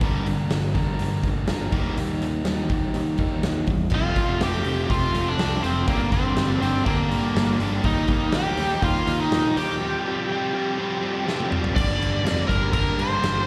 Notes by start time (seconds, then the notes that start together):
0.01 G1 G2 D3 G3 A#3 D4 A#4, kick, open hi-hat
0.26 G2 D3, open hi-hat
0.50 G1 G2 D3, snare, open hi-hat
0.74 G1 G2 D3 G3 A#3 D4 A#4, kick, open hi-hat
0.99 G1 G2 D3, open hi-hat
1.23 G1 G2, kick, open hi-hat
1.28 D3
1.47 G1 G2 D3 G3 A#3 D4 A#4, snare, open hi-hat
1.72 D#2 D#3 G3 A#3 D#4 G4, kick, open hi-hat
1.97 D#2 D#3 G3, open hi-hat
2.22 D#3 G3, open hi-hat
2.45 D#2 D#3 G3 A#3 D#4 G4, snare, open hi-hat
2.69 D#3 G3, kick, open hi-hat
2.94 D#2 D#3 G3, open hi-hat
3.17 D#2 D#3 A#3 D#4 G4, kick, open hi-hat
3.21 G3
3.43 D#2 D#3 G3, snare, open hi-hat
3.67 E2 D#3 G3, kick, open hi-hat
3.90 F1 F2 C3 F3 F4, kick, crash
3.94 A3 C4 F4
4.15 F1 F2 C3 F3 A3 C4 F4, kick, open hi-hat
4.41 F1 F2 C3 F3 F4 G4, snare, open hi-hat
4.45 A3 C4
4.64 F1 F2 C3 F3 F4, open hi-hat
4.69 A3 C4
4.90 F1 F2 C3 F3 A3 C4 F4, kick, open hi-hat
5.14 F1 F2 C3 F3 A3 C4 F4, open hi-hat
5.28 D4
5.37 C2 F2 C3 F3 A3 C4 F4, snare, open hi-hat
5.62 F1 F2 C3 F3 A3 C4 F4, open hi-hat
5.87 G1 G2 D3 G3 A#3 D4 G4, kick, open hi-hat
6.12 G1 G2 D3 G3 A#3 C4 D4 G4, kick, open hi-hat
6.36 G1 G2 D3 G3 A#3 D4 G4, snare, open hi-hat
6.61 G1 G2 D3 G3 A#3 C4 D4 G4, open hi-hat
6.86 G1 G2 D3 G3 A#3 D4 G4, kick, open hi-hat
7.09 G2 D3 G3 A#3 D4 G4, open hi-hat
7.34 G1 G2 D3 G3 A#3 D4 G4, snare, open hi-hat
7.59 G1 G2 D3 G3 A#3 D4 G4, open hi-hat
7.84 D#2 D#3 G3 A#3 D#4 G4, kick, open hi-hat
8.07 D#2 D#3 G3 A#3 G4, kick, open hi-hat
8.12 D#4
8.32 D#2 D#3 G3 A#3 D#4 G4, snare, open hi-hat
8.57 D#2 D#3 G3 A#3 D#4 G4, open hi-hat
8.82 D#2 D#3 G3 A#3 D#4 F4 G4, kick, open hi-hat
9.06 D#2 D#3 G3 A#3 D#4 G4, open hi-hat
9.20 D#4
9.31 A#2 D#3 G3 A#3 D#4 G4, snare, open hi-hat
9.56 D#2 D#3 G3 A#3 D#4 G4, open hi-hat
9.81 F3 G3 C4 F4 G4
10.05 F3 G3 C4 F4
10.09 G4
10.28 F3 G3 C4 F4 G4
10.52 F3 G3 C4 F4 G4
10.78 F3 G3 C4 F4 G4
11.01 F3 G3 C4 F4 G4
11.27 F3 G3 C4 F4 G4, snare
11.40 high tom
11.50 F3 G3 C4 F4 G4, mid tom
11.64 floor tom
11.74 G1 G2 D3 G3 A#3 D4 D5, kick, crash
11.98 G3 A#3 D4, crash
12.23 F2 D3 G3 A#3 D4, snare, crash
12.47 G1 G2 D3 G3 A#3 D4 A#4, kick, crash
12.71 G1 D3 G3 A#3 D4 A#4, kick, crash
12.96 G2 G3 A#3 D4, crash
13.00 C5
13.20 G1 G2 D3 G3 A#3 D4, snare, crash